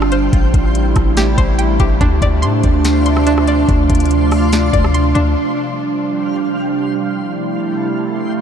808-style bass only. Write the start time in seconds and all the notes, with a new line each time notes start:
Already playing: G1
0.33 A1
0.54 A1
0.96 A1
1.38 A1
1.80 A1
2.01 D2
2.22 D2
2.43 A2
2.64 D2
3.69 D2
3.90 D2
4.73 D2
5.16 D2